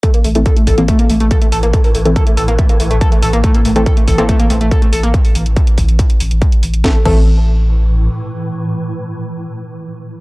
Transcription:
<<
  \new Staff \with { instrumentName = "Synth stab" } { \time 4/4 \key a \minor \tempo 4 = 141 r8. <e c' a'>16 r8. <e c' a'>16 r2 | r8. <e c' a'>16 r2. | r8. <e c' a'>16 r8. <e c' a'>16 r2 | r1 |
<e c' a'>16 r16 <e c' a'>2.~ <e c' a'>8~ | <e c' a'>1 | }
  \new Staff \with { instrumentName = "Analog synth lead" } { \time 4/4 \key a \minor a16 bes16 a16 a16 a'16 a16 a'16 bes16 a16 bes16 a16 a16 a'16 a16 a'16 bes16 | a16 bes16 a16 a16 a'16 a16 a'16 bes16 a16 bes16 a16 a16 a'16 a16 a'16 bes16 | a16 bes16 a16 a16 a'16 a16 a'16 bes16 a16 bes16 a16 a16 a'16 a16 a'16 bes16 | r1 |
a16 r16 a16 r2. r16 | r1 | }
  \new Staff \with { instrumentName = "Synth drone" } { \clef bass \time 4/4 \key a \minor <a, e>1~ | <a, e>1~ | <a, e>1 | r1 |
<a, e>1~ | <a, e>1 | }
  \new Staff \with { instrumentName = "Sub bass" } { \clef bass \time 4/4 \key a \minor r8 a,,16 a,,16 r8 a,,16 a,,16 r8 a,,16 a,,16 r8 a,,16 a,,16 | r8 a,,16 a,,16 r8 a,,16 a,,16 r8 a,,16 a,,16 r8 a,,16 a,,16 | r8 a,,16 a,,16 r8 a,,16 a,,16 r8 a,,16 a,,16 r8 a,,16 a,,16 | r8 a,,16 a,,16 r8 a,,16 a,,16 r8 a,,16 a,,16 r8 a,,16 a,,16 |
a,,16 r16 a,,2~ a,,8 r4 | r1 | }
  \new DrumStaff \with { instrumentName = "Drums" } \drummode { \time 4/4 <hh bd>16 hh16 hho16 hh16 <hh bd>16 hh16 <hho bd>16 hh16 <hh bd>16 hh16 hho16 hh16 <hh bd>16 hh16 hho16 hh16 | <hh bd>16 hho16 hho16 hh16 <hh bd>16 hh16 hho16 hh16 <hh bd>16 hh16 hho16 hh16 <hh bd>16 hh16 hho16 hh16 | <hh bd>16 hh16 hho16 hh16 <hh bd>16 hh16 <hho bd>16 hh16 <hh bd>16 hh16 hho16 hh16 <hh bd>16 hh16 hho16 hh16 | <hh bd>16 hho16 hho16 hh16 <hh bd>16 hh16 <hho bd>16 hh16 <hh bd>16 hh16 hho16 hh16 <hh bd>16 hh16 hho16 hh16 |
<bd sn>8 <cymc bd>8 r4 r4 r4 | r4 r4 r4 r4 | }
>>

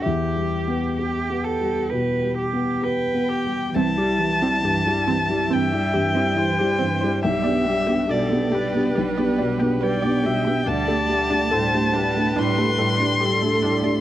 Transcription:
<<
  \new Staff \with { instrumentName = "Violin" } { \time 4/4 \key c \lydian \tempo 4 = 70 g'2. g''4 | a''2 g''2 | e''4 d''4. r8 g''4 | a''2 c'''2 | }
  \new Staff \with { instrumentName = "Viola" } { \time 4/4 \key c \lydian r1 | r2 e''4 c''4 | g'4 a'8 b'4. d''8 e''8 | d''4 c''8 b'4. a'4 | }
  \new Staff \with { instrumentName = "String section" } { \time 4/4 \key c \lydian r1 | <g g' e''>1 | <g g' g''>1 | <g g' g''>1 | }
  \new Staff \with { instrumentName = "Synth pluck" } { \time 4/4 \key c \lydian r1 | c'16 g'16 r16 c'16 g'16 r16 c'16 r16 c'16 g'16 g'16 c'16 e'16 g'16 c'16 c''16 | g'16 d''16 r16 g'16 d''16 r16 g'16 r16 g'16 d''16 d''16 g'16 b'16 d''16 g'16 g''16 | d'16 a'16 r16 d'16 a'16 r16 d'16 r16 d'16 a'16 a'16 d'16 g'16 a'16 d'16 d''16 | }
  \new Staff \with { instrumentName = "Felt piano" } { \time 4/4 \key c \lydian << { e''2.~ e''8 r8 | r1 | r1 | r1 | } \\ { \tuplet 3/2 { e,8 g8 b8 g'8 b8 g8 b,8 g8 b8 g'8 b8 g8 } | c,16 <e' g'>16 g16 <e' g'>16 g,16 <e' g'>16 g16 <e' g'>16 g,16 <e' g'>16 g,16 <e' g'>16 g16 <e' g'>16 g,16 <e' g'>16 | b,,16 <d' g'>16 g16 <d' g'>16 b,16 <d' g'>16 g16 <d' g'>16 b,,16 <d' g'>16 b,16 <d' g'>16 g16 <d' g'>16 b,16 <d' g'>16 | d,16 <d' g'>16 g16 <d' g'>16 a,16 <d' g'>16 g16 <d' g'>16 a,16 <d' g'>16 a,16 <d' g'>16 g16 <d' g'>16 a,16 <d' g'>16 | } >> }
  \new Staff \with { instrumentName = "Cello" } { \clef bass \time 4/4 \key c \lydian g'4 g'8 a'8 b'8 g'8 b'8 g'8 | e16 g16 e16 g16 e16 g16 e16 g16 e16 g16 e16 g16 e16 g16 e16 g16 | g16 b16 g16 b16 g16 b16 g16 b16 g16 b16 g16 b16 g16 b16 g16 b16 | g16 a16 g16 a16 g16 a16 g16 a16 g16 a16 g16 a16 g16 a16 g16 a16 | }
>>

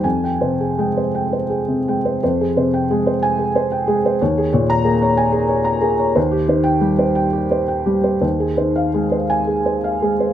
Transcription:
<<
  \new Staff \with { instrumentName = "Felt piano" } { \time 6/8 \key f \minor \tempo 4. = 58 << { aes''8 r2 r8 | r4. aes''8 r4 | r8. bes''8 r4. r16 | r8. g''8 r4. r16 |
r4. aes''8 r4 | } \\ { r16 g''16 c''16 aes'16 g''16 c''16 g''16 c''16 aes'16 c16 g''16 c''16 | c''16 aes'16 c''16 g''16 aes'16 c''8 aes'16 c''16 g''16 aes'16 c''16 | des''16 aes'16 des''8 aes'16 des''16 aes''16 aes'16 des''16 bes''16 aes'16 des''16 | c''16 g'16 c''8 g'16 c''16 g''16 g'16 c''16 g''16 g'16 c''16 |
c''16 aes'16 c''16 f''16 aes'16 c''8 aes'16 c''16 f''16 aes'16 c''16 | } >> }
  \new Staff \with { instrumentName = "Felt piano" } { \clef bass \time 6/8 \key f \minor f,8 c8 aes4 r8 aes8 | f,8 c8 aes4 r8 aes8 | ees,8 bes,8 bes4 r8 bes8 | ees,8 ees8 g4 r8 g8 |
ees,8 ees8 aes4 r8 aes8 | }
>>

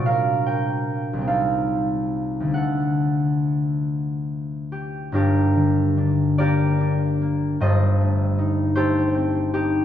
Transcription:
<<
  \new Staff \with { instrumentName = "Harp" } { \time 6/8 \key g \minor \tempo 4. = 49 << { <d'' f''>8 g''4 f''4. | fis''2~ fis''8 g'8 | bes'4. d''4. | ees''4. c''4 g'8 | } \\ { bes'8 bes'4 a'4. | a'2. | <d' g'>4. <g' bes'>4. | <a' c''>4. <g' a'>4. | } >> }
  \new Staff \with { instrumentName = "Harp" } { \time 6/8 \key g \minor << { r2. | r2. | <g,, g,>8 d8 d'8 bes8 d'8 bes8 | <g,, g,>8 a8 ees'8 a8 c'8 ees'8 | } \\ { <bes, g d'>4. <c, g c' ees'>4. | <d, d a d'>2.~ | <d, d a d'>2. | r2. | } >> }
>>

